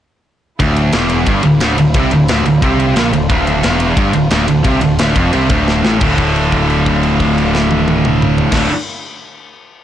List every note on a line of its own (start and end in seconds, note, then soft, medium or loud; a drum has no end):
0.59 0.91 D1 loud
0.59 0.93 D2 loud
0.59 5.97 D3 medium
0.59 5.97 A3 medium
0.59 3.27 E4 medium
0.59 5.97 F4 medium
0.59 kick loud
0.59 ride loud
0.76 ride medium
0.92 1.25 E1 medium
0.92 1.27 E2 loud
0.92 snare loud
0.92 ride loud
1.10 ride medium
1.26 1.43 G1 loud
1.26 1.44 G2 loud
1.26 kick medium
1.26 ride loud
1.43 1.59 D1 medium
1.43 1.58 D2 medium
1.43 ride medium
1.60 1.76 D1 medium
1.60 1.77 D2 loud
1.60 snare loud
1.60 ride loud
1.77 1.93 D1 medium
1.77 1.92 D2 medium
1.77 ride medium
1.94 2.10 C2 loud
1.94 2.11 C3 loud
1.94 kick loud
1.94 ride loud
2.11 2.27 D1 medium
2.11 2.25 D2 medium
2.11 ride medium
2.28 2.44 D1 loud
2.28 2.45 D2 loud
2.28 snare loud
2.28 ride loud
2.45 2.61 D1 medium
2.45 2.62 D2 medium
2.45 ride medium
2.62 2.94 C2 medium
2.62 2.96 C3 loud
2.62 kick loud
2.62 ride loud
2.80 ride medium
2.96 3.12 A#1 medium
2.96 3.13 A#2 loud
2.96 snare loud
2.96 ride loud
3.13 3.29 D1 medium
3.13 3.27 D2 medium
3.13 ride medium
3.30 3.61 D1 loud
3.30 3.64 D2 loud
3.30 5.99 D4 medium
3.30 kick loud
3.30 ride medium
3.47 ride medium
3.63 3.95 E1 medium
3.63 3.97 E2 loud
3.63 snare loud
3.63 ride loud
3.80 ride medium
3.97 4.13 G1 medium
3.97 4.14 G2 loud
3.97 kick loud
3.97 ride loud
4.13 4.31 D1 medium
4.13 4.28 D2 medium
4.13 ride medium
4.31 4.47 D1 medium
4.31 4.47 D2 loud
4.31 snare loud
4.31 ride loud
4.48 4.64 D1 medium
4.48 4.62 D2 medium
4.48 ride medium
4.64 4.81 C2 medium
4.64 4.81 C3 loud
4.64 kick loud
4.64 ride loud
4.81 4.98 D1 medium
4.81 4.96 D2 medium
4.81 ride medium
4.99 5.15 D1 medium
4.99 5.16 D2 loud
4.99 snare loud
4.99 ride loud
5.16 5.32 F1 medium
5.16 5.33 F2 loud
5.16 kick loud
5.16 ride medium
5.33 5.49 C2 medium
5.33 5.50 C3 loud
5.33 ride medium
5.49 5.82 D1 loud
5.49 5.84 D2 loud
5.49 kick loud
5.49 ride medium
5.68 snare medium
5.84 6.00 A1 loud
5.84 6.00 A2 loud
5.84 snare medium
6.00 8.44 D1 medium
6.00 8.51 D2 loud
6.00 8.53 A2 loud
6.00 8.44 D3 medium
6.00 8.44 A3 medium
6.00 8.45 E4 medium
6.00 8.44 F4 medium
6.00 kick loud
6.00 crash medium
6.04 8.55 D3 loud
6.18 kick medium
6.18 crash soft
6.36 crash soft
6.52 kick medium
6.52 crash soft
6.70 crash soft
6.86 kick medium
6.86 crash soft
7.03 crash medium
7.20 kick medium
7.20 crash medium
7.38 crash medium
7.55 snare medium
7.71 high tom loud
7.88 high tom loud
8.05 mid tom loud
8.22 mid tom loud
8.38 floor tom loud
8.51 8.66 D1 medium
8.51 8.67 D2 loud
8.51 8.68 A2 loud
8.51 8.66 D3 medium
8.51 8.69 D3 loud
8.51 8.67 A3 medium
8.51 8.66 E4 medium
8.51 8.67 F4 medium
8.51 kick loud
8.51 snare loud
8.51 crash loud